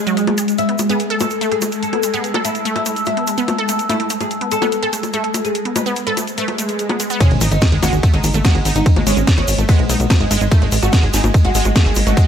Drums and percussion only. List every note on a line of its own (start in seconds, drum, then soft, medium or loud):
0.07 closed hi-hat soft
0.07 shaker medium
0.17 closed hi-hat medium
0.17 shaker soft
0.27 closed hi-hat soft
0.27 high bongo medium
0.38 closed hi-hat medium
0.38 shaker medium
0.48 closed hi-hat soft
0.48 shaker medium
0.58 closed hi-hat medium
0.58 shaker soft
0.69 closed hi-hat soft
0.78 closed hi-hat medium
0.78 high bongo soft
0.78 shaker medium
0.89 closed hi-hat soft
0.89 shaker soft
1.00 closed hi-hat medium
1.00 shaker soft
1.10 closed hi-hat soft
1.20 closed hi-hat medium
1.20 high bongo medium
1.20 shaker loud
1.30 closed hi-hat soft
1.30 shaker medium
1.41 closed hi-hat medium
1.41 shaker soft
1.52 closed hi-hat soft
1.61 closed hi-hat medium
1.61 high bongo soft
1.61 shaker loud
1.72 closed hi-hat soft
1.72 shaker soft
1.83 closed hi-hat medium
1.83 shaker soft
1.93 closed hi-hat soft
1.93 high bongo soft
2.03 closed hi-hat medium
2.03 shaker loud
2.14 closed hi-hat soft
2.14 shaker soft
2.24 closed hi-hat medium
2.24 shaker soft
2.34 closed hi-hat soft
2.34 high bongo medium
2.45 closed hi-hat medium
2.45 shaker medium
2.55 closed hi-hat soft
2.55 shaker soft
2.65 closed hi-hat medium
2.65 shaker soft
2.76 closed hi-hat soft
2.76 high bongo soft
2.86 closed hi-hat medium
2.86 shaker loud
2.96 closed hi-hat soft
2.96 shaker medium
3.05 closed hi-hat medium
3.05 high bongo soft
3.05 shaker soft
3.17 closed hi-hat soft
3.27 closed hi-hat medium
3.27 shaker medium
3.38 closed hi-hat soft
3.38 shaker medium
3.48 closed hi-hat medium
3.48 high bongo medium
3.48 shaker soft
3.58 closed hi-hat soft
3.69 closed hi-hat medium
3.69 shaker medium
3.79 closed hi-hat soft
3.79 shaker soft
3.89 closed hi-hat medium
3.89 high bongo soft
3.89 shaker soft
4.00 closed hi-hat soft
4.10 closed hi-hat loud
4.10 shaker medium
4.21 closed hi-hat soft
4.21 high bongo soft
4.21 shaker soft
4.31 closed hi-hat medium
4.31 shaker soft
4.41 closed hi-hat soft
4.52 closed hi-hat loud
4.52 shaker medium
4.62 closed hi-hat soft
4.62 high bongo medium
4.62 shaker soft
4.72 closed hi-hat medium
4.72 shaker soft
4.83 closed hi-hat soft
4.93 closed hi-hat loud
4.93 shaker medium
5.03 closed hi-hat soft
5.03 high bongo soft
5.03 shaker medium
5.13 closed hi-hat medium
5.13 shaker soft
5.24 closed hi-hat soft
5.34 closed hi-hat medium
5.34 high bongo soft
5.34 shaker medium
5.45 closed hi-hat soft
5.45 shaker soft
5.55 closed hi-hat medium
5.55 shaker soft
5.65 closed hi-hat soft
5.76 closed hi-hat loud
5.76 high bongo medium
5.76 shaker medium
5.86 closed hi-hat soft
5.86 shaker soft
5.96 closed hi-hat medium
5.96 shaker soft
6.07 closed hi-hat soft
6.17 closed hi-hat loud
6.17 high bongo soft
6.17 shaker medium
6.27 closed hi-hat soft
6.27 shaker medium
6.38 closed hi-hat medium
6.38 shaker soft
6.48 closed hi-hat soft
6.48 high bongo soft
6.58 closed hi-hat loud
6.58 shaker medium
6.68 closed hi-hat soft
6.68 shaker soft
6.79 closed hi-hat medium
6.79 shaker soft
6.89 closed hi-hat soft
6.89 high bongo medium
7.00 closed hi-hat medium
7.00 shaker medium
7.10 closed hi-hat soft
7.10 shaker medium
7.20 kick loud
7.20 closed hi-hat medium
7.20 ride medium
7.20 shaker soft
7.31 closed hi-hat soft
7.41 open hi-hat loud
7.41 high bongo soft
7.41 shaker loud
7.51 closed hi-hat soft
7.51 shaker medium
7.61 kick loud
7.61 snare loud
7.61 closed hi-hat medium
7.61 ride medium
7.61 shaker soft
7.72 closed hi-hat soft
7.83 snare medium
7.83 open hi-hat loud
7.83 high bongo medium
7.83 shaker loud
7.93 closed hi-hat soft
7.93 shaker medium
8.03 kick loud
8.03 closed hi-hat medium
8.03 ride medium
8.03 shaker soft
8.14 closed hi-hat soft
8.24 open hi-hat loud
8.24 high bongo soft
8.24 shaker medium
8.34 closed hi-hat soft
8.34 shaker medium
8.44 kick loud
8.44 snare loud
8.44 closed hi-hat medium
8.44 ride medium
8.44 shaker soft
8.55 closed hi-hat soft
8.55 high bongo soft
8.65 open hi-hat loud
8.65 shaker medium
8.75 closed hi-hat soft
8.75 shaker medium
8.86 kick loud
8.86 closed hi-hat medium
8.86 ride medium
8.86 shaker soft
8.96 closed hi-hat soft
8.96 high bongo medium
9.07 open hi-hat loud
9.07 shaker medium
9.17 closed hi-hat soft
9.17 shaker medium
9.27 kick loud
9.27 snare loud
9.27 closed hi-hat medium
9.27 ride medium
9.27 shaker soft
9.38 closed hi-hat soft
9.38 high bongo soft
9.48 open hi-hat loud
9.48 shaker loud
9.58 closed hi-hat soft
9.58 shaker medium
9.69 kick loud
9.69 open hi-hat medium
9.69 ride medium
9.69 high bongo soft
9.69 shaker soft
9.79 closed hi-hat soft
9.89 open hi-hat loud
9.89 shaker medium
10.00 closed hi-hat soft
10.00 shaker medium
10.10 kick loud
10.10 snare loud
10.10 closed hi-hat medium
10.10 ride medium
10.10 high bongo medium
10.10 shaker soft
10.20 closed hi-hat soft
10.31 open hi-hat loud
10.31 shaker medium
10.41 closed hi-hat soft
10.41 shaker medium
10.51 kick loud
10.51 closed hi-hat medium
10.51 ride medium
10.51 high bongo soft
10.51 shaker soft
10.62 closed hi-hat soft
10.72 open hi-hat loud
10.72 shaker loud
10.83 closed hi-hat soft
10.83 high bongo soft
10.83 shaker medium
10.92 kick loud
10.92 snare loud
10.92 closed hi-hat medium
10.92 ride medium
10.92 shaker soft
11.03 closed hi-hat soft
11.13 snare medium
11.13 open hi-hat loud
11.13 shaker loud
11.24 closed hi-hat soft
11.24 high bongo medium
11.24 shaker medium
11.34 kick loud
11.34 closed hi-hat medium
11.34 ride medium
11.34 shaker soft
11.45 closed hi-hat soft
11.55 open hi-hat loud
11.55 shaker loud
11.65 closed hi-hat soft
11.65 high bongo soft
11.65 shaker medium
11.76 kick loud
11.76 snare loud
11.76 closed hi-hat medium
11.76 ride medium
11.76 shaker soft
11.86 closed hi-hat soft
11.95 open hi-hat loud
11.95 high bongo soft
11.95 shaker medium
12.07 closed hi-hat soft
12.07 shaker medium
12.17 kick loud
12.17 closed hi-hat medium
12.17 ride medium
12.17 shaker soft